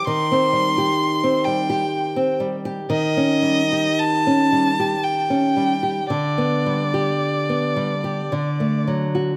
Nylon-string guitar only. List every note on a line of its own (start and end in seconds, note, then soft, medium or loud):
0.07 2.86 D#3 medium
0.32 0.66 C4 medium
0.53 0.88 G3 medium
0.78 1.50 G4 medium
1.24 1.59 C4 medium
1.47 1.83 G3 medium
1.70 2.46 G4 medium
2.16 2.55 C4 medium
2.40 2.79 G3 medium
2.65 2.90 G4 medium
2.90 6.08 D#3 medium
3.17 3.61 C#4 medium
3.42 3.88 G3 medium
3.72 4.59 G4 medium
4.27 4.69 C#4 medium
4.52 4.94 G3 medium
4.80 5.63 G4 medium
5.30 5.73 C#4 medium
5.56 6.00 G3 medium
5.83 6.11 G4 medium
6.10 8.28 D3 medium
6.38 6.83 B3 medium
6.66 7.11 G3 medium
6.94 7.83 G4 medium
7.49 7.94 B3 medium
7.76 8.21 G3 medium
8.04 8.32 G4 soft
8.32 9.37 D3 medium
8.60 9.04 A3 soft
8.87 9.31 F#3 soft
9.15 9.37 F#4 medium